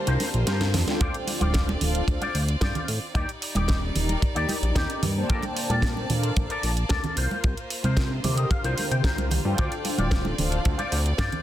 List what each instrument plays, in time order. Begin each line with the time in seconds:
Already playing: violin section A#3 F4 C5, analog polysynth D4 G4 A#4 C5 A5
0.06 analog synth bass C2, clean electric guitar F4 A#4 C5, closed hi-hat
0.20 snare, open hi-hat, muted conga
0.34 analog synth bass A#1, closed hi-hat
0.46 analog synth bass G2, clean electric guitar F4 A#4 C5, snare, closed hi-hat
0.61 snare, closed hi-hat, muted conga
0.74 analog synth bass F2, snare, open hi-hat, low conga
0.86 analog polysynth D4 F4 A4 C5 G5, snare, closed hi-hat, high conga
1.00 analog synth bass D2, violin section C4 D5, clean electric guitar F4 C5 D5, kick, closed hi-hat
1.14 closed hi-hat
1.27 muted clean electric guitar stroke, open hi-hat, muted conga
1.40 analog synth bass D1, clean electric guitar F4 C5 D5, closed hi-hat, high conga
1.54 kick, snare, closed hi-hat
1.69 muted conga
1.81 analog synth bass D1, analog polysynth D4 F4 A4 C5 F5, open hi-hat, low conga
1.94 muted clean electric guitar stroke, closed hi-hat
2.07 analog synth bass D2, analog polysynth D4 F4 A4 C5 F5, kick, closed hi-hat
2.21 clean electric guitar F4 C5 D5, closed hi-hat, muted conga
2.35 analog synth bass D2, open hi-hat
2.48 closed hi-hat
2.61 analog synth bass G2, clean electric guitar F4 C5 D5, kick, snare, closed hi-hat, muted conga
2.75 closed hi-hat, low conga
2.88 analog synth bass A2, open hi-hat
3.14 analog synth bass D#2, violin section G3 D#4 D5, clean electric guitar D#4 G4 D5, kick, closed hi-hat, muted conga
3.29 closed hi-hat
3.41 muted clean electric guitar stroke, open hi-hat
3.55 analog synth bass D#1, clean electric guitar D#4 G4 D5, closed hi-hat, muted conga, high conga
3.68 kick, snare, closed hi-hat
3.95 analog synth bass D#1, analog polysynth D#4 G4 A#4 D5 A#5, open hi-hat, low conga
4.08 muted clean electric guitar stroke, closed hi-hat, muted conga
4.22 kick, closed hi-hat
4.35 analog synth bass D#2, clean electric guitar D#4 G4 D5, closed hi-hat
4.49 open hi-hat, muted conga
4.62 analog synth bass A#1, closed hi-hat
4.75 analog synth bass D#2, clean electric guitar D#4 G4 D5, kick, snare, closed hi-hat
4.90 closed hi-hat
5.02 analog synth bass G2, open hi-hat, muted conga, low conga
5.15 analog polysynth A#3 D4 C5 G5 A5
5.29 analog synth bass A#1, violin section A#3 D5 A5, clean electric guitar A4 A#4 D5, kick, closed hi-hat
5.42 closed hi-hat, muted conga
5.55 muted clean electric guitar stroke, open hi-hat
5.69 analog synth bass A#2, clean electric guitar A4 A#4 D5, closed hi-hat, high conga
5.82 kick, snare, closed hi-hat
5.97 muted conga
6.09 analog synth bass A#2, analog polysynth D4 A4 A#4 C5 F5, open hi-hat, low conga
6.23 muted clean electric guitar stroke, closed hi-hat
6.37 analog synth bass A#1, analog polysynth C5 F5, kick, closed hi-hat, muted conga
6.49 clean electric guitar A4 A#4 D5, closed hi-hat
6.63 analog synth bass A#1, open hi-hat
6.77 closed hi-hat
6.89 analog synth bass D2, clean electric guitar A4 A#4 D5, kick, snare, closed hi-hat, muted conga
7.04 closed hi-hat, low conga
7.16 analog synth bass C2, clean electric guitar F4 A#4 C5, violin section F4 C5, open hi-hat
7.31 muted conga
7.44 analog synth bass C2, kick, closed hi-hat
7.57 closed hi-hat
7.70 muted clean electric guitar stroke, open hi-hat
7.83 analog synth bass C3, clean electric guitar F4 A#4 C5, closed hi-hat, muted conga, high conga
7.97 kick, snare, closed hi-hat
8.23 analog synth bass C3, analog polysynth D3 G4 A#4 C5, clean electric guitar D5, open hi-hat, muted conga, low conga
8.37 clean electric guitar D#5, muted clean electric guitar stroke, closed hi-hat
8.51 clean electric guitar F5, kick, closed hi-hat
8.63 analog synth bass C2, clean electric guitar F4 A#4 C5, closed hi-hat
8.78 open hi-hat, muted conga
8.91 analog synth bass C3, clean electric guitar G5, closed hi-hat
9.03 analog synth bass C2, clean electric guitar F4 A#4 C5 A#5, kick, snare, closed hi-hat
9.18 closed hi-hat, muted conga
9.31 open hi-hat, low conga
9.44 analog synth bass G2, analog polysynth D4 F4 A4 C5 G5
9.57 analog synth bass D2, violin section C4 D5, clean electric guitar F4 C5 D5, kick, closed hi-hat
9.72 closed hi-hat
9.84 muted clean electric guitar stroke, open hi-hat, muted conga
9.98 analog synth bass D1, clean electric guitar F4 C5 D5, closed hi-hat, high conga
10.11 kick, snare, closed hi-hat
10.25 muted conga
10.38 analog synth bass D1, analog polysynth D4 F4 A4 C5 F5, open hi-hat, low conga
10.51 muted clean electric guitar stroke, closed hi-hat
10.65 analog synth bass D2, analog polysynth D4 F4 A4 C5 F5, kick, closed hi-hat
10.78 clean electric guitar F4 C5 D5, closed hi-hat, muted conga
10.92 analog synth bass D2, open hi-hat
11.06 closed hi-hat
11.18 analog synth bass G2, clean electric guitar F4 C5 D5, kick, snare, closed hi-hat, muted conga
11.32 closed hi-hat, low conga